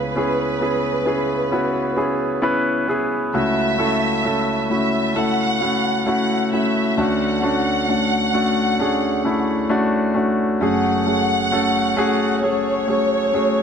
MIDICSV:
0, 0, Header, 1, 3, 480
1, 0, Start_track
1, 0, Tempo, 909091
1, 1764, Time_signature, 4, 2, 24, 8
1, 7194, End_track
2, 0, Start_track
2, 0, Title_t, "Violin section"
2, 0, Program_c, 0, 48
2, 0, Note_on_c, 0, 71, 68
2, 1286, Note_off_c, 0, 71, 0
2, 1766, Note_on_c, 0, 76, 87
2, 2464, Note_off_c, 0, 76, 0
2, 2489, Note_on_c, 0, 76, 72
2, 2710, Note_off_c, 0, 76, 0
2, 2728, Note_on_c, 0, 78, 85
2, 3202, Note_off_c, 0, 78, 0
2, 3209, Note_on_c, 0, 78, 75
2, 3429, Note_off_c, 0, 78, 0
2, 3451, Note_on_c, 0, 76, 68
2, 3687, Note_off_c, 0, 76, 0
2, 3697, Note_on_c, 0, 78, 79
2, 5130, Note_off_c, 0, 78, 0
2, 5614, Note_on_c, 0, 78, 92
2, 6548, Note_off_c, 0, 78, 0
2, 6570, Note_on_c, 0, 73, 84
2, 7194, Note_off_c, 0, 73, 0
2, 7194, End_track
3, 0, Start_track
3, 0, Title_t, "Grand piano"
3, 0, Program_c, 1, 0
3, 0, Control_c, 1, 64, 127
3, 0, Note_on_c, 1, 37, 50
3, 0, Note_on_c, 1, 49, 46
3, 0, Note_on_c, 1, 59, 60
3, 0, Note_on_c, 1, 61, 51
3, 0, Note_on_c, 1, 64, 52
3, 0, Note_on_c, 1, 68, 67
3, 60, Note_off_c, 1, 59, 0
3, 60, Note_off_c, 1, 61, 0
3, 62, Note_off_c, 1, 64, 0
3, 63, Note_off_c, 1, 68, 0
3, 81, Note_on_c, 1, 59, 65
3, 83, Note_on_c, 1, 61, 62
3, 86, Note_on_c, 1, 64, 58
3, 91, Note_on_c, 1, 68, 73
3, 310, Note_off_c, 1, 59, 0
3, 311, Note_off_c, 1, 61, 0
3, 313, Note_off_c, 1, 64, 0
3, 315, Note_off_c, 1, 68, 0
3, 321, Note_on_c, 1, 59, 54
3, 323, Note_on_c, 1, 61, 50
3, 326, Note_on_c, 1, 64, 53
3, 328, Note_on_c, 1, 68, 60
3, 549, Note_off_c, 1, 59, 0
3, 551, Note_off_c, 1, 61, 0
3, 552, Note_off_c, 1, 64, 0
3, 554, Note_off_c, 1, 68, 0
3, 557, Note_on_c, 1, 59, 61
3, 560, Note_on_c, 1, 61, 60
3, 562, Note_on_c, 1, 64, 55
3, 565, Note_on_c, 1, 68, 69
3, 788, Note_off_c, 1, 59, 0
3, 790, Note_off_c, 1, 61, 0
3, 790, Note_off_c, 1, 64, 0
3, 792, Note_off_c, 1, 68, 0
3, 800, Note_on_c, 1, 59, 67
3, 802, Note_on_c, 1, 61, 63
3, 804, Note_on_c, 1, 64, 62
3, 806, Note_on_c, 1, 66, 75
3, 1028, Note_off_c, 1, 59, 0
3, 1029, Note_off_c, 1, 61, 0
3, 1032, Note_off_c, 1, 64, 0
3, 1033, Note_off_c, 1, 66, 0
3, 1036, Note_on_c, 1, 59, 67
3, 1037, Note_on_c, 1, 61, 62
3, 1039, Note_on_c, 1, 64, 56
3, 1043, Note_on_c, 1, 68, 72
3, 1267, Note_off_c, 1, 59, 0
3, 1268, Note_off_c, 1, 61, 0
3, 1269, Note_off_c, 1, 64, 0
3, 1271, Note_off_c, 1, 68, 0
3, 1276, Note_on_c, 1, 59, 85
3, 1279, Note_on_c, 1, 61, 82
3, 1280, Note_on_c, 1, 64, 77
3, 1285, Note_on_c, 1, 71, 89
3, 1505, Note_off_c, 1, 37, 0
3, 1505, Note_off_c, 1, 49, 0
3, 1508, Note_off_c, 1, 59, 0
3, 1509, Note_off_c, 1, 61, 0
3, 1509, Note_off_c, 1, 64, 0
3, 1512, Note_off_c, 1, 71, 0
3, 1519, Note_on_c, 1, 59, 72
3, 1522, Note_on_c, 1, 61, 59
3, 1525, Note_on_c, 1, 64, 67
3, 1528, Note_on_c, 1, 68, 78
3, 1749, Note_off_c, 1, 59, 0
3, 1751, Note_off_c, 1, 61, 0
3, 1752, Note_off_c, 1, 64, 0
3, 1754, Note_off_c, 1, 68, 0
3, 1761, Note_on_c, 1, 57, 65
3, 1763, Note_on_c, 1, 61, 63
3, 1764, Note_on_c, 1, 37, 49
3, 1764, Note_on_c, 1, 49, 46
3, 1766, Note_on_c, 1, 64, 63
3, 1767, Note_on_c, 1, 66, 79
3, 1769, Control_c, 1, 64, 0
3, 1872, Control_c, 1, 64, 127
3, 1989, Note_off_c, 1, 57, 0
3, 1991, Note_off_c, 1, 61, 0
3, 1992, Note_off_c, 1, 64, 0
3, 1993, Note_off_c, 1, 66, 0
3, 1997, Note_on_c, 1, 57, 70
3, 2000, Note_on_c, 1, 61, 59
3, 2003, Note_on_c, 1, 64, 61
3, 2005, Note_on_c, 1, 69, 75
3, 2228, Note_off_c, 1, 57, 0
3, 2230, Note_off_c, 1, 61, 0
3, 2231, Note_off_c, 1, 64, 0
3, 2232, Note_off_c, 1, 69, 0
3, 2240, Note_on_c, 1, 57, 53
3, 2244, Note_on_c, 1, 61, 50
3, 2246, Note_on_c, 1, 64, 51
3, 2250, Note_on_c, 1, 69, 62
3, 2470, Note_off_c, 1, 57, 0
3, 2471, Note_off_c, 1, 61, 0
3, 2473, Note_off_c, 1, 64, 0
3, 2475, Note_off_c, 1, 69, 0
3, 2479, Note_on_c, 1, 57, 55
3, 2483, Note_on_c, 1, 61, 50
3, 2484, Note_on_c, 1, 64, 49
3, 2488, Note_on_c, 1, 66, 59
3, 2709, Note_off_c, 1, 57, 0
3, 2711, Note_off_c, 1, 61, 0
3, 2712, Note_off_c, 1, 64, 0
3, 2714, Note_off_c, 1, 66, 0
3, 2717, Note_on_c, 1, 57, 55
3, 2721, Note_on_c, 1, 61, 51
3, 2724, Note_on_c, 1, 64, 50
3, 2726, Note_on_c, 1, 69, 64
3, 2948, Note_off_c, 1, 57, 0
3, 2950, Note_off_c, 1, 61, 0
3, 2952, Note_off_c, 1, 64, 0
3, 2952, Note_off_c, 1, 69, 0
3, 2963, Note_on_c, 1, 57, 52
3, 2965, Note_on_c, 1, 64, 51
3, 2966, Note_on_c, 1, 61, 51
3, 2970, Note_on_c, 1, 66, 56
3, 3191, Note_off_c, 1, 57, 0
3, 3192, Note_off_c, 1, 64, 0
3, 3193, Note_off_c, 1, 61, 0
3, 3195, Note_off_c, 1, 66, 0
3, 3200, Note_on_c, 1, 57, 68
3, 3201, Note_on_c, 1, 61, 68
3, 3206, Note_on_c, 1, 64, 61
3, 3208, Note_on_c, 1, 66, 78
3, 3430, Note_off_c, 1, 57, 0
3, 3430, Note_off_c, 1, 61, 0
3, 3433, Note_off_c, 1, 64, 0
3, 3434, Note_off_c, 1, 66, 0
3, 3442, Note_on_c, 1, 57, 58
3, 3446, Note_on_c, 1, 61, 53
3, 3447, Note_on_c, 1, 64, 54
3, 3451, Note_on_c, 1, 66, 61
3, 3663, Note_off_c, 1, 37, 0
3, 3663, Note_off_c, 1, 49, 0
3, 3671, Note_off_c, 1, 57, 0
3, 3673, Note_off_c, 1, 61, 0
3, 3673, Note_off_c, 1, 64, 0
3, 3675, Note_off_c, 1, 66, 0
3, 3682, Note_on_c, 1, 57, 71
3, 3684, Note_on_c, 1, 38, 48
3, 3684, Note_on_c, 1, 61, 62
3, 3685, Note_on_c, 1, 50, 50
3, 3686, Note_on_c, 1, 62, 60
3, 3689, Note_on_c, 1, 66, 74
3, 3691, Control_c, 1, 64, 0
3, 3788, Control_c, 1, 64, 127
3, 3910, Note_off_c, 1, 57, 0
3, 3912, Note_off_c, 1, 61, 0
3, 3913, Note_off_c, 1, 62, 0
3, 3914, Note_off_c, 1, 66, 0
3, 3918, Note_on_c, 1, 57, 60
3, 3920, Note_on_c, 1, 61, 60
3, 3925, Note_on_c, 1, 62, 65
3, 3927, Note_on_c, 1, 66, 76
3, 4149, Note_off_c, 1, 57, 0
3, 4150, Note_off_c, 1, 61, 0
3, 4152, Note_off_c, 1, 62, 0
3, 4153, Note_off_c, 1, 66, 0
3, 4164, Note_on_c, 1, 57, 51
3, 4167, Note_on_c, 1, 61, 49
3, 4171, Note_on_c, 1, 62, 51
3, 4173, Note_on_c, 1, 66, 58
3, 4392, Note_off_c, 1, 57, 0
3, 4393, Note_off_c, 1, 61, 0
3, 4395, Note_off_c, 1, 62, 0
3, 4396, Note_off_c, 1, 66, 0
3, 4401, Note_on_c, 1, 57, 63
3, 4403, Note_on_c, 1, 61, 59
3, 4405, Note_on_c, 1, 62, 59
3, 4408, Note_on_c, 1, 66, 71
3, 4630, Note_off_c, 1, 57, 0
3, 4631, Note_off_c, 1, 61, 0
3, 4632, Note_off_c, 1, 62, 0
3, 4634, Note_off_c, 1, 66, 0
3, 4642, Note_on_c, 1, 57, 62
3, 4643, Note_on_c, 1, 61, 64
3, 4647, Note_on_c, 1, 62, 59
3, 4652, Note_on_c, 1, 68, 67
3, 4871, Note_off_c, 1, 57, 0
3, 4871, Note_off_c, 1, 61, 0
3, 4873, Note_off_c, 1, 62, 0
3, 4876, Note_off_c, 1, 68, 0
3, 4881, Note_on_c, 1, 57, 64
3, 4882, Note_on_c, 1, 61, 58
3, 4885, Note_on_c, 1, 62, 56
3, 4889, Note_on_c, 1, 64, 69
3, 5110, Note_off_c, 1, 57, 0
3, 5110, Note_off_c, 1, 61, 0
3, 5112, Note_off_c, 1, 62, 0
3, 5114, Note_off_c, 1, 64, 0
3, 5118, Note_on_c, 1, 57, 80
3, 5120, Note_on_c, 1, 61, 71
3, 5123, Note_on_c, 1, 62, 76
3, 5128, Note_on_c, 1, 66, 89
3, 5347, Note_off_c, 1, 57, 0
3, 5350, Note_off_c, 1, 61, 0
3, 5351, Note_off_c, 1, 62, 0
3, 5353, Note_off_c, 1, 66, 0
3, 5355, Note_on_c, 1, 57, 67
3, 5359, Note_on_c, 1, 61, 57
3, 5361, Note_on_c, 1, 62, 59
3, 5365, Note_on_c, 1, 66, 71
3, 5583, Note_off_c, 1, 38, 0
3, 5583, Note_off_c, 1, 50, 0
3, 5587, Note_off_c, 1, 57, 0
3, 5589, Note_off_c, 1, 61, 0
3, 5590, Note_off_c, 1, 62, 0
3, 5592, Note_off_c, 1, 66, 0
3, 5600, Note_on_c, 1, 57, 69
3, 5603, Note_on_c, 1, 30, 44
3, 5603, Note_on_c, 1, 61, 65
3, 5605, Note_on_c, 1, 42, 49
3, 5606, Note_on_c, 1, 66, 63
3, 5609, Control_c, 1, 64, 0
3, 5610, Note_on_c, 1, 68, 74
3, 5704, Control_c, 1, 64, 127
3, 5830, Note_off_c, 1, 57, 0
3, 5831, Note_off_c, 1, 61, 0
3, 5833, Note_off_c, 1, 66, 0
3, 5835, Note_off_c, 1, 68, 0
3, 5841, Note_on_c, 1, 57, 55
3, 5844, Note_on_c, 1, 61, 51
3, 5845, Note_on_c, 1, 66, 48
3, 5848, Note_on_c, 1, 68, 55
3, 6070, Note_off_c, 1, 57, 0
3, 6072, Note_off_c, 1, 61, 0
3, 6072, Note_off_c, 1, 66, 0
3, 6074, Note_off_c, 1, 68, 0
3, 6080, Note_on_c, 1, 57, 69
3, 6084, Note_on_c, 1, 61, 71
3, 6084, Note_on_c, 1, 66, 66
3, 6087, Note_on_c, 1, 69, 80
3, 6310, Note_off_c, 1, 57, 0
3, 6311, Note_off_c, 1, 61, 0
3, 6311, Note_off_c, 1, 66, 0
3, 6313, Note_off_c, 1, 69, 0
3, 6318, Note_on_c, 1, 57, 83
3, 6321, Note_on_c, 1, 61, 76
3, 6325, Note_on_c, 1, 66, 81
3, 6327, Note_on_c, 1, 68, 97
3, 6549, Note_off_c, 1, 57, 0
3, 6550, Note_off_c, 1, 61, 0
3, 6552, Note_off_c, 1, 66, 0
3, 6553, Note_off_c, 1, 68, 0
3, 6561, Note_on_c, 1, 57, 59
3, 6563, Note_on_c, 1, 61, 53
3, 6569, Note_on_c, 1, 66, 51
3, 6569, Note_on_c, 1, 68, 63
3, 6789, Note_off_c, 1, 57, 0
3, 6791, Note_off_c, 1, 61, 0
3, 6794, Note_off_c, 1, 66, 0
3, 6794, Note_off_c, 1, 68, 0
3, 6797, Note_on_c, 1, 57, 54
3, 6801, Note_on_c, 1, 61, 51
3, 6805, Note_on_c, 1, 66, 51
3, 6806, Note_on_c, 1, 68, 60
3, 7028, Note_off_c, 1, 57, 0
3, 7030, Note_off_c, 1, 61, 0
3, 7032, Note_off_c, 1, 66, 0
3, 7032, Note_off_c, 1, 68, 0
3, 7040, Note_on_c, 1, 57, 60
3, 7042, Note_on_c, 1, 61, 52
3, 7046, Note_on_c, 1, 66, 55
3, 7047, Note_on_c, 1, 68, 64
3, 7194, Note_off_c, 1, 30, 0
3, 7194, Note_off_c, 1, 42, 0
3, 7194, Note_off_c, 1, 57, 0
3, 7194, Note_off_c, 1, 61, 0
3, 7194, Note_off_c, 1, 66, 0
3, 7194, Note_off_c, 1, 68, 0
3, 7194, End_track
0, 0, End_of_file